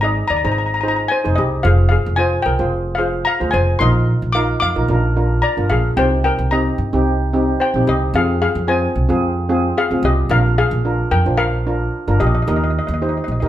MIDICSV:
0, 0, Header, 1, 4, 480
1, 0, Start_track
1, 0, Tempo, 541028
1, 1459, Time_signature, 4, 2, 24, 8
1, 11965, End_track
2, 0, Start_track
2, 0, Title_t, "Steel pan"
2, 0, Program_c, 0, 114
2, 9, Note_on_c, 0, 82, 88
2, 38, Note_on_c, 0, 75, 70
2, 234, Note_off_c, 0, 82, 0
2, 245, Note_on_c, 0, 82, 88
2, 252, Note_off_c, 0, 75, 0
2, 270, Note_on_c, 0, 74, 68
2, 314, Note_off_c, 0, 82, 0
2, 325, Note_on_c, 0, 82, 62
2, 330, Note_off_c, 0, 74, 0
2, 387, Note_off_c, 0, 82, 0
2, 397, Note_on_c, 0, 82, 70
2, 447, Note_off_c, 0, 82, 0
2, 458, Note_on_c, 0, 82, 60
2, 506, Note_off_c, 0, 82, 0
2, 517, Note_on_c, 0, 82, 65
2, 576, Note_off_c, 0, 82, 0
2, 587, Note_on_c, 0, 82, 55
2, 647, Note_off_c, 0, 82, 0
2, 657, Note_on_c, 0, 82, 70
2, 706, Note_off_c, 0, 82, 0
2, 716, Note_on_c, 0, 82, 63
2, 773, Note_off_c, 0, 82, 0
2, 783, Note_on_c, 0, 82, 71
2, 844, Note_off_c, 0, 82, 0
2, 854, Note_on_c, 0, 82, 63
2, 915, Note_off_c, 0, 82, 0
2, 962, Note_on_c, 0, 80, 94
2, 990, Note_on_c, 0, 72, 70
2, 1203, Note_on_c, 0, 75, 85
2, 1208, Note_off_c, 0, 72, 0
2, 1218, Note_off_c, 0, 80, 0
2, 1231, Note_on_c, 0, 67, 64
2, 1314, Note_off_c, 0, 75, 0
2, 1336, Note_off_c, 0, 67, 0
2, 1448, Note_on_c, 0, 77, 91
2, 1479, Note_on_c, 0, 68, 74
2, 1664, Note_off_c, 0, 77, 0
2, 1675, Note_on_c, 0, 77, 86
2, 1691, Note_off_c, 0, 68, 0
2, 1701, Note_on_c, 0, 68, 67
2, 1909, Note_off_c, 0, 77, 0
2, 1918, Note_on_c, 0, 80, 95
2, 1923, Note_off_c, 0, 68, 0
2, 1946, Note_on_c, 0, 72, 73
2, 2031, Note_off_c, 0, 80, 0
2, 2052, Note_off_c, 0, 72, 0
2, 2151, Note_on_c, 0, 79, 91
2, 2182, Note_on_c, 0, 70, 71
2, 2616, Note_on_c, 0, 77, 87
2, 2627, Note_off_c, 0, 70, 0
2, 2647, Note_on_c, 0, 68, 65
2, 2659, Note_off_c, 0, 79, 0
2, 2876, Note_off_c, 0, 68, 0
2, 2882, Note_on_c, 0, 82, 102
2, 2885, Note_off_c, 0, 77, 0
2, 2902, Note_on_c, 0, 77, 74
2, 3112, Note_on_c, 0, 80, 91
2, 3123, Note_off_c, 0, 77, 0
2, 3137, Note_on_c, 0, 72, 72
2, 3138, Note_off_c, 0, 82, 0
2, 3361, Note_off_c, 0, 72, 0
2, 3362, Note_on_c, 0, 84, 102
2, 3373, Note_off_c, 0, 80, 0
2, 3386, Note_on_c, 0, 75, 85
2, 3816, Note_off_c, 0, 84, 0
2, 3829, Note_off_c, 0, 75, 0
2, 3837, Note_on_c, 0, 86, 99
2, 3858, Note_on_c, 0, 77, 76
2, 4069, Note_off_c, 0, 86, 0
2, 4080, Note_on_c, 0, 86, 91
2, 4081, Note_off_c, 0, 77, 0
2, 4101, Note_on_c, 0, 77, 76
2, 4773, Note_off_c, 0, 86, 0
2, 4784, Note_off_c, 0, 77, 0
2, 4808, Note_on_c, 0, 82, 95
2, 4820, Note_on_c, 0, 74, 73
2, 5036, Note_off_c, 0, 82, 0
2, 5042, Note_off_c, 0, 74, 0
2, 5054, Note_on_c, 0, 77, 84
2, 5068, Note_on_c, 0, 68, 68
2, 5286, Note_off_c, 0, 68, 0
2, 5298, Note_on_c, 0, 79, 93
2, 5303, Note_off_c, 0, 77, 0
2, 5312, Note_on_c, 0, 72, 75
2, 5521, Note_off_c, 0, 79, 0
2, 5529, Note_off_c, 0, 72, 0
2, 5539, Note_on_c, 0, 79, 89
2, 5548, Note_on_c, 0, 70, 74
2, 5761, Note_off_c, 0, 79, 0
2, 5766, Note_off_c, 0, 70, 0
2, 5776, Note_on_c, 0, 82, 82
2, 5788, Note_on_c, 0, 75, 67
2, 5884, Note_off_c, 0, 82, 0
2, 5893, Note_off_c, 0, 75, 0
2, 6744, Note_on_c, 0, 72, 66
2, 6756, Note_on_c, 0, 79, 86
2, 6964, Note_off_c, 0, 72, 0
2, 6987, Note_on_c, 0, 67, 62
2, 6993, Note_off_c, 0, 79, 0
2, 6998, Note_on_c, 0, 75, 83
2, 7206, Note_off_c, 0, 67, 0
2, 7235, Note_off_c, 0, 75, 0
2, 7235, Note_on_c, 0, 77, 98
2, 7236, Note_on_c, 0, 68, 73
2, 7451, Note_off_c, 0, 68, 0
2, 7458, Note_off_c, 0, 77, 0
2, 7468, Note_on_c, 0, 77, 85
2, 7470, Note_on_c, 0, 68, 70
2, 7687, Note_off_c, 0, 68, 0
2, 7702, Note_on_c, 0, 80, 91
2, 7708, Note_on_c, 0, 72, 70
2, 7710, Note_off_c, 0, 77, 0
2, 7923, Note_off_c, 0, 80, 0
2, 7926, Note_off_c, 0, 72, 0
2, 8672, Note_on_c, 0, 68, 74
2, 8677, Note_on_c, 0, 77, 96
2, 8888, Note_off_c, 0, 68, 0
2, 8891, Note_off_c, 0, 77, 0
2, 8914, Note_on_c, 0, 67, 66
2, 8917, Note_on_c, 0, 75, 86
2, 9018, Note_off_c, 0, 67, 0
2, 9020, Note_off_c, 0, 75, 0
2, 9144, Note_on_c, 0, 70, 80
2, 9149, Note_on_c, 0, 77, 97
2, 9364, Note_off_c, 0, 70, 0
2, 9377, Note_off_c, 0, 77, 0
2, 9388, Note_on_c, 0, 77, 96
2, 9390, Note_on_c, 0, 68, 80
2, 9830, Note_off_c, 0, 68, 0
2, 9859, Note_on_c, 0, 70, 76
2, 9861, Note_on_c, 0, 79, 89
2, 9876, Note_off_c, 0, 77, 0
2, 10081, Note_off_c, 0, 70, 0
2, 10082, Note_off_c, 0, 79, 0
2, 10092, Note_on_c, 0, 77, 102
2, 10096, Note_on_c, 0, 70, 80
2, 10781, Note_off_c, 0, 70, 0
2, 10823, Note_on_c, 0, 75, 80
2, 10824, Note_on_c, 0, 67, 63
2, 10836, Note_off_c, 0, 77, 0
2, 10872, Note_off_c, 0, 75, 0
2, 10883, Note_on_c, 0, 75, 61
2, 10887, Note_off_c, 0, 67, 0
2, 10944, Note_off_c, 0, 75, 0
2, 10955, Note_on_c, 0, 75, 66
2, 11013, Note_off_c, 0, 75, 0
2, 11022, Note_on_c, 0, 75, 54
2, 11066, Note_off_c, 0, 75, 0
2, 11076, Note_on_c, 0, 75, 60
2, 11137, Note_off_c, 0, 75, 0
2, 11148, Note_on_c, 0, 75, 55
2, 11201, Note_off_c, 0, 75, 0
2, 11212, Note_on_c, 0, 75, 55
2, 11260, Note_off_c, 0, 75, 0
2, 11271, Note_on_c, 0, 75, 47
2, 11333, Note_off_c, 0, 75, 0
2, 11344, Note_on_c, 0, 75, 59
2, 11409, Note_off_c, 0, 75, 0
2, 11419, Note_on_c, 0, 75, 52
2, 11468, Note_off_c, 0, 75, 0
2, 11478, Note_on_c, 0, 75, 56
2, 11538, Note_off_c, 0, 75, 0
2, 11553, Note_on_c, 0, 75, 46
2, 11603, Note_off_c, 0, 75, 0
2, 11614, Note_on_c, 0, 75, 52
2, 11677, Note_off_c, 0, 75, 0
2, 11688, Note_on_c, 0, 75, 44
2, 11737, Note_off_c, 0, 75, 0
2, 11748, Note_on_c, 0, 75, 52
2, 11805, Note_off_c, 0, 75, 0
2, 11816, Note_on_c, 0, 75, 46
2, 11879, Note_off_c, 0, 75, 0
2, 11889, Note_on_c, 0, 75, 51
2, 11929, Note_off_c, 0, 75, 0
2, 11965, End_track
3, 0, Start_track
3, 0, Title_t, "Steel pan"
3, 0, Program_c, 1, 114
3, 21, Note_on_c, 1, 63, 71
3, 21, Note_on_c, 1, 68, 70
3, 27, Note_on_c, 1, 74, 74
3, 237, Note_off_c, 1, 63, 0
3, 237, Note_off_c, 1, 68, 0
3, 240, Note_off_c, 1, 74, 0
3, 390, Note_on_c, 1, 63, 68
3, 393, Note_on_c, 1, 68, 68
3, 396, Note_on_c, 1, 72, 77
3, 603, Note_off_c, 1, 63, 0
3, 604, Note_off_c, 1, 68, 0
3, 606, Note_off_c, 1, 72, 0
3, 735, Note_on_c, 1, 63, 68
3, 739, Note_on_c, 1, 68, 68
3, 741, Note_on_c, 1, 72, 81
3, 955, Note_off_c, 1, 63, 0
3, 956, Note_off_c, 1, 68, 0
3, 958, Note_off_c, 1, 72, 0
3, 1098, Note_on_c, 1, 63, 73
3, 1101, Note_on_c, 1, 68, 65
3, 1106, Note_on_c, 1, 72, 84
3, 1317, Note_off_c, 1, 63, 0
3, 1318, Note_off_c, 1, 68, 0
3, 1321, Note_off_c, 1, 72, 0
3, 1454, Note_on_c, 1, 65, 76
3, 1454, Note_on_c, 1, 68, 64
3, 1458, Note_on_c, 1, 72, 78
3, 1748, Note_off_c, 1, 65, 0
3, 1748, Note_off_c, 1, 68, 0
3, 1749, Note_off_c, 1, 72, 0
3, 1931, Note_on_c, 1, 65, 75
3, 1931, Note_on_c, 1, 68, 71
3, 1938, Note_on_c, 1, 72, 81
3, 2152, Note_off_c, 1, 65, 0
3, 2153, Note_off_c, 1, 68, 0
3, 2156, Note_off_c, 1, 72, 0
3, 2299, Note_on_c, 1, 68, 64
3, 2300, Note_on_c, 1, 65, 73
3, 2305, Note_on_c, 1, 72, 79
3, 2517, Note_off_c, 1, 68, 0
3, 2518, Note_off_c, 1, 65, 0
3, 2520, Note_off_c, 1, 72, 0
3, 2647, Note_on_c, 1, 65, 71
3, 2652, Note_on_c, 1, 68, 64
3, 2654, Note_on_c, 1, 72, 81
3, 2870, Note_off_c, 1, 65, 0
3, 2873, Note_off_c, 1, 68, 0
3, 2874, Note_off_c, 1, 72, 0
3, 3017, Note_on_c, 1, 65, 73
3, 3020, Note_on_c, 1, 72, 79
3, 3022, Note_on_c, 1, 68, 65
3, 3236, Note_off_c, 1, 65, 0
3, 3238, Note_off_c, 1, 72, 0
3, 3239, Note_off_c, 1, 68, 0
3, 3369, Note_on_c, 1, 63, 69
3, 3369, Note_on_c, 1, 65, 67
3, 3374, Note_on_c, 1, 70, 81
3, 3665, Note_off_c, 1, 63, 0
3, 3665, Note_off_c, 1, 65, 0
3, 3667, Note_off_c, 1, 70, 0
3, 3855, Note_on_c, 1, 63, 73
3, 3857, Note_on_c, 1, 65, 63
3, 3857, Note_on_c, 1, 70, 79
3, 4074, Note_off_c, 1, 63, 0
3, 4075, Note_off_c, 1, 65, 0
3, 4075, Note_off_c, 1, 70, 0
3, 4221, Note_on_c, 1, 63, 70
3, 4223, Note_on_c, 1, 65, 67
3, 4224, Note_on_c, 1, 70, 78
3, 4332, Note_off_c, 1, 65, 0
3, 4335, Note_off_c, 1, 63, 0
3, 4337, Note_off_c, 1, 70, 0
3, 4340, Note_on_c, 1, 62, 72
3, 4343, Note_on_c, 1, 65, 67
3, 4346, Note_on_c, 1, 70, 80
3, 4534, Note_off_c, 1, 62, 0
3, 4536, Note_off_c, 1, 65, 0
3, 4537, Note_off_c, 1, 70, 0
3, 4582, Note_on_c, 1, 65, 66
3, 4583, Note_on_c, 1, 62, 68
3, 4584, Note_on_c, 1, 70, 77
3, 4798, Note_off_c, 1, 62, 0
3, 4798, Note_off_c, 1, 65, 0
3, 4799, Note_off_c, 1, 70, 0
3, 4941, Note_on_c, 1, 62, 73
3, 4944, Note_on_c, 1, 65, 66
3, 4949, Note_on_c, 1, 70, 74
3, 5158, Note_off_c, 1, 62, 0
3, 5159, Note_off_c, 1, 65, 0
3, 5162, Note_off_c, 1, 70, 0
3, 5291, Note_on_c, 1, 60, 70
3, 5299, Note_on_c, 1, 63, 62
3, 5300, Note_on_c, 1, 67, 78
3, 5585, Note_off_c, 1, 60, 0
3, 5589, Note_off_c, 1, 63, 0
3, 5590, Note_off_c, 1, 67, 0
3, 5786, Note_on_c, 1, 60, 72
3, 5788, Note_on_c, 1, 63, 65
3, 5789, Note_on_c, 1, 67, 78
3, 5999, Note_off_c, 1, 60, 0
3, 6000, Note_off_c, 1, 63, 0
3, 6001, Note_off_c, 1, 67, 0
3, 6148, Note_on_c, 1, 60, 84
3, 6153, Note_on_c, 1, 63, 74
3, 6155, Note_on_c, 1, 67, 95
3, 6361, Note_off_c, 1, 60, 0
3, 6364, Note_off_c, 1, 63, 0
3, 6365, Note_off_c, 1, 67, 0
3, 6505, Note_on_c, 1, 60, 82
3, 6507, Note_on_c, 1, 63, 79
3, 6512, Note_on_c, 1, 67, 92
3, 6719, Note_off_c, 1, 60, 0
3, 6720, Note_off_c, 1, 63, 0
3, 6722, Note_off_c, 1, 67, 0
3, 6879, Note_on_c, 1, 60, 77
3, 6881, Note_on_c, 1, 63, 65
3, 6881, Note_on_c, 1, 67, 85
3, 7087, Note_off_c, 1, 60, 0
3, 7088, Note_off_c, 1, 63, 0
3, 7088, Note_off_c, 1, 67, 0
3, 7228, Note_on_c, 1, 60, 73
3, 7233, Note_on_c, 1, 68, 84
3, 7234, Note_on_c, 1, 65, 65
3, 7514, Note_off_c, 1, 60, 0
3, 7517, Note_off_c, 1, 65, 0
3, 7517, Note_off_c, 1, 68, 0
3, 7694, Note_on_c, 1, 65, 67
3, 7695, Note_on_c, 1, 60, 70
3, 7698, Note_on_c, 1, 68, 83
3, 7913, Note_off_c, 1, 65, 0
3, 7914, Note_off_c, 1, 60, 0
3, 7915, Note_off_c, 1, 68, 0
3, 8061, Note_on_c, 1, 60, 87
3, 8063, Note_on_c, 1, 65, 80
3, 8069, Note_on_c, 1, 68, 94
3, 8277, Note_off_c, 1, 60, 0
3, 8278, Note_off_c, 1, 65, 0
3, 8281, Note_off_c, 1, 68, 0
3, 8423, Note_on_c, 1, 60, 89
3, 8423, Note_on_c, 1, 68, 97
3, 8425, Note_on_c, 1, 65, 82
3, 8637, Note_off_c, 1, 60, 0
3, 8638, Note_off_c, 1, 68, 0
3, 8639, Note_off_c, 1, 65, 0
3, 8791, Note_on_c, 1, 60, 71
3, 8793, Note_on_c, 1, 65, 67
3, 8794, Note_on_c, 1, 68, 80
3, 9002, Note_off_c, 1, 60, 0
3, 9004, Note_off_c, 1, 65, 0
3, 9004, Note_off_c, 1, 68, 0
3, 9148, Note_on_c, 1, 62, 73
3, 9148, Note_on_c, 1, 70, 81
3, 9149, Note_on_c, 1, 65, 68
3, 9434, Note_off_c, 1, 62, 0
3, 9434, Note_off_c, 1, 65, 0
3, 9434, Note_off_c, 1, 70, 0
3, 9624, Note_on_c, 1, 62, 71
3, 9626, Note_on_c, 1, 65, 70
3, 9627, Note_on_c, 1, 70, 81
3, 9838, Note_off_c, 1, 62, 0
3, 9839, Note_off_c, 1, 65, 0
3, 9840, Note_off_c, 1, 70, 0
3, 9987, Note_on_c, 1, 62, 70
3, 9992, Note_on_c, 1, 65, 61
3, 9993, Note_on_c, 1, 72, 74
3, 10200, Note_off_c, 1, 62, 0
3, 10203, Note_off_c, 1, 65, 0
3, 10203, Note_off_c, 1, 72, 0
3, 10348, Note_on_c, 1, 62, 70
3, 10351, Note_on_c, 1, 65, 67
3, 10351, Note_on_c, 1, 70, 76
3, 10560, Note_off_c, 1, 62, 0
3, 10562, Note_off_c, 1, 65, 0
3, 10562, Note_off_c, 1, 70, 0
3, 10714, Note_on_c, 1, 62, 76
3, 10716, Note_on_c, 1, 70, 83
3, 10718, Note_on_c, 1, 65, 68
3, 10924, Note_off_c, 1, 62, 0
3, 10925, Note_off_c, 1, 70, 0
3, 10926, Note_off_c, 1, 65, 0
3, 11063, Note_on_c, 1, 63, 70
3, 11065, Note_on_c, 1, 67, 65
3, 11071, Note_on_c, 1, 70, 83
3, 11351, Note_off_c, 1, 63, 0
3, 11352, Note_off_c, 1, 67, 0
3, 11356, Note_off_c, 1, 70, 0
3, 11548, Note_on_c, 1, 67, 65
3, 11549, Note_on_c, 1, 63, 74
3, 11553, Note_on_c, 1, 72, 78
3, 11760, Note_off_c, 1, 67, 0
3, 11761, Note_off_c, 1, 63, 0
3, 11763, Note_off_c, 1, 72, 0
3, 11909, Note_on_c, 1, 63, 69
3, 11911, Note_on_c, 1, 67, 61
3, 11914, Note_on_c, 1, 70, 78
3, 11965, Note_off_c, 1, 63, 0
3, 11965, Note_off_c, 1, 67, 0
3, 11965, Note_off_c, 1, 70, 0
3, 11965, End_track
4, 0, Start_track
4, 0, Title_t, "Upright bass"
4, 0, Program_c, 2, 32
4, 0, Note_on_c, 2, 32, 95
4, 175, Note_off_c, 2, 32, 0
4, 266, Note_on_c, 2, 39, 81
4, 360, Note_off_c, 2, 39, 0
4, 394, Note_on_c, 2, 32, 83
4, 934, Note_off_c, 2, 32, 0
4, 1112, Note_on_c, 2, 29, 86
4, 1194, Note_off_c, 2, 29, 0
4, 1224, Note_on_c, 2, 36, 96
4, 1403, Note_off_c, 2, 36, 0
4, 1460, Note_on_c, 2, 29, 107
4, 1737, Note_off_c, 2, 29, 0
4, 1830, Note_on_c, 2, 29, 92
4, 2094, Note_off_c, 2, 29, 0
4, 2179, Note_on_c, 2, 36, 84
4, 2276, Note_off_c, 2, 36, 0
4, 2297, Note_on_c, 2, 29, 83
4, 2844, Note_off_c, 2, 29, 0
4, 3023, Note_on_c, 2, 38, 81
4, 3109, Note_off_c, 2, 38, 0
4, 3136, Note_on_c, 2, 29, 97
4, 3318, Note_off_c, 2, 29, 0
4, 3376, Note_on_c, 2, 34, 106
4, 3655, Note_off_c, 2, 34, 0
4, 3745, Note_on_c, 2, 34, 88
4, 4010, Note_off_c, 2, 34, 0
4, 4097, Note_on_c, 2, 41, 82
4, 4195, Note_off_c, 2, 41, 0
4, 4224, Note_on_c, 2, 34, 78
4, 4309, Note_off_c, 2, 34, 0
4, 4332, Note_on_c, 2, 34, 96
4, 4793, Note_off_c, 2, 34, 0
4, 4944, Note_on_c, 2, 31, 80
4, 5029, Note_off_c, 2, 31, 0
4, 5052, Note_on_c, 2, 34, 92
4, 5235, Note_off_c, 2, 34, 0
4, 5294, Note_on_c, 2, 36, 101
4, 5573, Note_off_c, 2, 36, 0
4, 5664, Note_on_c, 2, 36, 89
4, 5930, Note_off_c, 2, 36, 0
4, 6017, Note_on_c, 2, 43, 86
4, 6114, Note_off_c, 2, 43, 0
4, 6147, Note_on_c, 2, 36, 83
4, 6690, Note_off_c, 2, 36, 0
4, 6866, Note_on_c, 2, 34, 80
4, 6950, Note_off_c, 2, 34, 0
4, 6984, Note_on_c, 2, 36, 96
4, 7163, Note_off_c, 2, 36, 0
4, 7218, Note_on_c, 2, 41, 104
4, 7496, Note_off_c, 2, 41, 0
4, 7588, Note_on_c, 2, 41, 89
4, 7852, Note_off_c, 2, 41, 0
4, 7945, Note_on_c, 2, 36, 87
4, 8039, Note_off_c, 2, 36, 0
4, 8071, Note_on_c, 2, 41, 82
4, 8612, Note_off_c, 2, 41, 0
4, 8789, Note_on_c, 2, 38, 87
4, 8872, Note_off_c, 2, 38, 0
4, 8895, Note_on_c, 2, 36, 102
4, 9077, Note_off_c, 2, 36, 0
4, 9132, Note_on_c, 2, 34, 106
4, 9412, Note_off_c, 2, 34, 0
4, 9503, Note_on_c, 2, 34, 98
4, 9769, Note_off_c, 2, 34, 0
4, 9860, Note_on_c, 2, 41, 86
4, 9955, Note_off_c, 2, 41, 0
4, 9988, Note_on_c, 2, 34, 80
4, 10530, Note_off_c, 2, 34, 0
4, 10713, Note_on_c, 2, 31, 88
4, 10794, Note_off_c, 2, 31, 0
4, 10827, Note_on_c, 2, 34, 98
4, 11004, Note_off_c, 2, 34, 0
4, 11067, Note_on_c, 2, 39, 106
4, 11341, Note_off_c, 2, 39, 0
4, 11431, Note_on_c, 2, 39, 96
4, 11694, Note_off_c, 2, 39, 0
4, 11782, Note_on_c, 2, 34, 82
4, 11877, Note_off_c, 2, 34, 0
4, 11908, Note_on_c, 2, 39, 81
4, 11965, Note_off_c, 2, 39, 0
4, 11965, End_track
0, 0, End_of_file